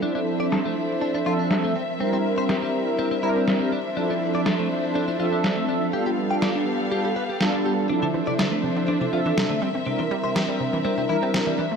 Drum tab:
SD |--o---o-|--o---o-|--o---o-|--o---o-|

SD |--o---o-|--o---o-|